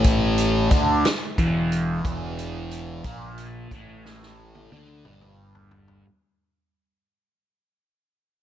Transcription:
0.00 0.68 A1 medium
0.00 0.71 A2 medium
0.00 0.71 A3 medium
0.04 kick medium
0.04 closed hi-hat medium
0.38 closed hi-hat medium
0.71 1.03 D2 medium
0.71 1.04 D3 medium
0.71 1.04 D4 medium
0.71 kick medium
0.71 closed hi-hat medium
1.05 snare medium
1.05 closed hi-hat medium
1.38 2.01 E1 medium
1.38 2.04 E2 medium
1.38 2.05 E3 medium
1.38 kick medium
1.38 closed hi-hat medium
1.72 closed hi-hat medium
2.04 3.01 E1 medium
2.04 3.04 E2 medium
2.04 3.04 E3 medium
2.04 kick medium
2.04 closed hi-hat medium
2.39 closed hi-hat medium
2.71 closed hi-hat medium
3.04 3.67 A#1 medium
3.04 3.71 A#2 medium
3.04 3.71 A#3 medium
3.04 kick medium
3.04 closed hi-hat medium
3.38 closed hi-hat medium
3.71 4.67 A1 medium
3.71 4.71 A2 medium
3.71 4.72 A3 medium
3.71 kick medium
3.71 closed hi-hat soft
4.06 snare medium
4.23 snare soft
4.55 high tom soft
4.72 5.03 D2 medium
4.72 5.04 D3 medium
4.72 5.05 D4 medium
4.72 high tom medium
5.05 6.02 G1 medium
5.05 6.05 G2 medium
5.05 6.05 G3 medium
5.05 mid tom medium
5.21 mid tom medium
5.55 floor tom medium
5.71 floor tom medium
5.88 floor tom medium

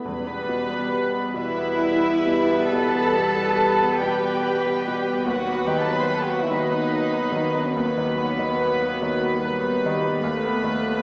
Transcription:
0.03 5.24 E2 soft
0.03 1.30 E2 medium
0.03 2.68 E2 soft
0.03 5.24 G3 soft
0.03 1.30 G3 soft
0.03 5.24 B4 soft
0.03 1.30 B4 medium
0.03 1.29 B5 soft
0.27 0.61 B3 soft
0.49 0.82 B2 soft
0.70 1.04 B3 soft
0.89 1.24 B4 soft
1.14 1.48 B3 soft
1.34 1.70 B2 soft
1.34 3.97 G3 soft
1.34 2.68 E4 medium
1.34 3.97 B4 soft
1.34 2.69 E5 medium
1.34 3.97 B5 soft
1.58 1.94 B3 soft
1.79 2.16 B4 soft
2.04 2.41 B3 soft
2.26 2.63 B2 soft
2.51 2.86 B3 soft
2.72 3.08 B2 soft
2.72 4.00 A4 medium
2.72 4.01 A5 medium
2.95 3.29 B3 soft
3.17 3.50 B2 soft
3.37 3.71 B3 soft
3.59 3.92 B4 soft
3.82 4.15 B3 soft
4.00 4.35 B2 soft
4.00 5.26 G3 soft
4.00 5.29 G4 medium
4.00 5.26 B4 soft
4.00 5.26 G5 soft
4.00 5.26 B5 soft
4.23 4.57 B3 soft
4.43 4.77 B4 soft
4.66 4.99 B3 soft
4.87 5.21 B2 soft
5.07 5.29 B3 soft
5.27 7.71 D#2 soft
5.27 10.16 D#2 soft
5.27 10.04 F#3 soft
5.27 6.50 F#3 soft
5.27 5.65 F#4 medium
5.27 10.04 B4 soft
5.27 6.49 B4 medium
5.27 5.66 F#5 soft
5.27 6.49 B5 soft
5.48 5.82 B3 soft
5.65 6.02 D#3 soft
5.65 5.81 G4 medium
5.65 5.80 G5 medium
5.80 5.92 A4 soft
5.80 5.91 A5 soft
5.88 6.22 B3 soft
5.88 6.00 B4 soft
5.88 6.00 B5 soft
5.99 6.08 C5 soft
5.99 6.07 C6 soft
6.07 6.15 B4 soft
6.07 6.43 B4 soft
6.07 6.14 B5 soft
6.15 6.23 A4 soft
6.15 6.23 A5 soft
6.21 6.31 G4 soft
6.21 6.32 G5 soft
6.30 6.64 B3 soft
6.30 6.41 F#4 medium
6.30 6.41 F#5 soft
6.39 6.51 E4 soft
6.39 6.51 E5 soft
6.49 6.85 D#3 soft
6.49 7.73 F#3 soft
6.49 7.75 D#4 medium
6.49 7.73 B4 soft
6.49 7.74 D#5 soft
6.49 7.72 B5 soft
6.70 7.05 B3 soft
6.91 7.25 B4 soft
7.12 7.46 B3 soft
7.32 7.66 D#3 soft
7.55 7.88 B3 soft
7.73 10.16 D#2 soft
7.73 9.37 F#3 soft
7.73 9.80 B3 medium
7.73 9.76 B4 medium
7.73 10.16 B4 soft
7.73 10.15 B5 medium
7.97 8.30 D#3 soft
8.18 8.50 B3 soft
8.39 8.71 D#3 soft
8.61 8.92 B4 soft
8.82 9.13 B3 soft
9.02 9.33 D#3 soft
9.22 9.54 B3 soft
9.39 10.20 G3 soft
9.44 9.74 B4 soft
9.64 9.94 B3 soft
9.86 10.15 D#3 soft
10.05 10.22 B3 soft
10.19 11.02 D#2 medium
10.19 11.02 A3 medium
10.19 11.02 A3 soft
10.19 11.02 B4 medium
10.19 11.02 B4 soft
10.19 11.02 B5 medium
10.24 11.02 D#2 medium
10.45 10.74 B3 soft
10.64 10.94 D#3 soft
10.83 11.02 B3 soft

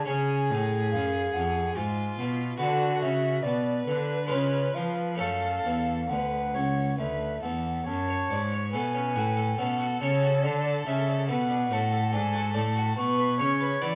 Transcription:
0.05 0.47 C#3 soft
0.05 0.52 C#3 medium
0.05 2.55 C#4 soft
0.05 2.55 G#4 soft
0.05 1.79 G#4 medium
0.05 0.64 G#5 medium
0.51 0.94 A2 medium
0.51 0.89 A2 soft
0.92 1.34 F#2 medium
0.92 1.31 F#2 soft
0.92 1.35 F5 medium
1.34 1.76 F2 medium
1.34 1.73 F2 soft
1.34 1.75 F#5 medium
1.75 2.18 G#2 medium
1.75 2.15 G#2 soft
1.75 2.59 F4 medium
1.75 2.17 G#5 medium
2.19 2.59 B2 medium
2.19 2.56 B2 soft
2.58 3.04 D3 medium
2.58 2.98 D3 soft
2.58 4.26 F#4 soft
2.58 3.43 F#4 medium
2.58 4.26 B4 soft
2.58 2.98 F#5 medium
3.01 3.44 C#3 soft
3.01 3.41 C#3 soft
3.01 3.45 E5 medium
3.43 3.86 B2 soft
3.43 3.83 B2 soft
3.43 5.22 B4 medium
3.43 3.86 D5 medium
3.86 4.33 D3 soft
3.86 4.27 D3 soft
3.86 4.30 B4 medium
4.27 5.15 G#3 soft
4.27 5.16 F4 soft
4.27 5.17 B4 soft
4.27 4.76 C#5 medium
4.31 4.71 C#3 soft
4.31 4.75 C#3 soft
4.75 5.22 F3 soft
4.75 5.16 F3 soft
4.75 5.19 F5 medium
5.15 5.61 A3 soft
5.15 5.62 C#4 soft
5.15 7.82 A4 soft
5.15 6.11 F5 medium
5.20 5.61 F#2 soft
5.20 5.64 F#2 medium
5.20 6.01 A4 soft
5.65 6.12 E2 soft
5.65 6.06 E2 soft
6.09 6.50 D2 soft
6.09 6.56 D2 soft
6.09 6.56 B4 medium
6.09 6.98 F#5 medium
6.54 6.95 C#2 soft
6.54 6.98 C#2 soft
6.54 6.98 C#5 soft
6.98 7.39 D2 soft
6.98 7.42 D2 soft
6.98 7.42 B4 medium
6.98 7.44 E5 medium
7.42 7.83 E2 soft
7.42 7.86 E2 soft
7.42 7.86 A4 soft
7.42 7.88 F#5 medium
7.86 8.26 F#2 soft
7.86 8.27 F#2 medium
7.86 8.69 C#5 medium
7.86 8.41 A5 medium
8.08 8.31 C#5 soft
8.30 8.69 G#2 soft
8.30 8.75 G#2 medium
8.30 8.52 D5 soft
8.52 8.74 C#5 soft
8.72 9.12 B2 soft
8.72 9.18 B2 soft
8.72 8.96 A4 soft
8.72 9.56 B4 medium
8.72 9.60 G#5 medium
8.95 9.17 C#4 soft
9.16 9.54 A2 soft
9.16 9.59 A2 medium
9.16 9.38 F#4 soft
9.37 9.59 A4 soft
9.58 9.97 B2 soft
9.58 10.01 B2 medium
9.58 9.81 C#4 soft
9.58 11.26 A4 medium
9.58 10.01 F#5 medium
9.80 10.02 F#4 soft
10.01 10.40 C#3 soft
10.01 10.46 C#3 medium
10.01 10.24 C#5 soft
10.01 10.45 C#5 medium
10.23 10.44 F#4 soft
10.43 10.83 D3 soft
10.43 10.86 D3 medium
10.43 10.86 D5 medium
10.66 10.88 D5 soft
10.86 11.25 C#3 soft
10.86 11.31 C#3 medium
10.86 11.28 E5 medium
10.86 11.08 E5 soft
11.08 11.30 D5 soft
11.28 11.67 B2 soft
11.28 11.71 B2 medium
11.28 11.51 A4 soft
11.28 11.74 B4 medium
11.28 12.14 F#5 medium
11.50 11.72 D4 soft
11.71 12.09 A2 soft
11.71 12.16 A2 medium
11.71 11.93 F#4 soft
11.71 12.97 A4 medium
11.92 12.14 A4 soft
12.13 12.51 G#2 soft
12.13 12.58 G#2 medium
12.13 12.35 D4 soft
12.13 12.56 G#5 medium
12.34 12.56 F#4 soft
12.54 12.93 A2 soft
12.54 12.98 A2 medium
12.54 12.77 D5 soft
12.54 12.96 A5 medium
12.76 12.97 F#4 soft
12.97 13.35 B2 soft
12.97 13.42 B2 medium
12.97 13.39 B4 medium
12.97 13.53 C#6 medium
13.18 13.41 B4 soft
13.39 13.78 C#3 medium
13.39 13.82 C#3 medium
13.39 13.61 C#5 soft
13.39 13.83 C#5 medium
13.61 13.83 B4 soft
13.82 13.95 E3 soft
13.82 13.95 E3 medium
13.82 13.95 F#4 soft
13.82 13.95 D5 medium
13.82 13.95 B5 medium

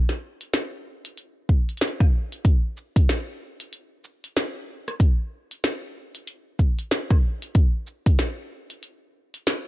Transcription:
0.09 snare soft
0.41 closed hi-hat medium
0.54 snare loud
0.54 closed hi-hat soft
1.05 closed hi-hat medium
1.18 closed hi-hat soft
1.49 kick medium
1.69 closed hi-hat soft
1.77 snare loud
1.77 closed hi-hat soft
1.81 closed hi-hat soft
1.88 closed hi-hat soft
2.00 kick loud
2.00 cross-stick soft
2.32 closed hi-hat medium
2.45 kick loud
2.45 closed hi-hat soft
2.77 shaker medium
2.96 kick loud
2.96 closed hi-hat medium
3.09 snare loud
3.09 closed hi-hat soft
3.60 closed hi-hat medium
3.73 closed hi-hat soft
4.04 shaker medium
4.24 closed hi-hat medium
4.37 snare loud
4.37 closed hi-hat soft
4.88 cross-stick soft
4.88 closed hi-hat medium
5.00 kick loud
5.00 closed hi-hat soft
5.51 closed hi-hat medium
5.64 snare loud
5.64 closed hi-hat soft
6.15 closed hi-hat medium
6.27 closed hi-hat soft
6.59 kick medium
6.59 shaker medium
6.79 closed hi-hat medium
6.91 snare loud
6.91 closed hi-hat soft
7.10 kick medium
7.10 cross-stick soft
7.42 closed hi-hat medium
7.55 kick loud
7.55 closed hi-hat soft
7.87 shaker medium
8.06 kick medium
8.06 closed hi-hat medium
8.19 snare loud
8.19 closed hi-hat soft
8.70 closed hi-hat medium
8.83 closed hi-hat soft
9.34 closed hi-hat medium
9.47 snare loud
9.47 closed hi-hat soft

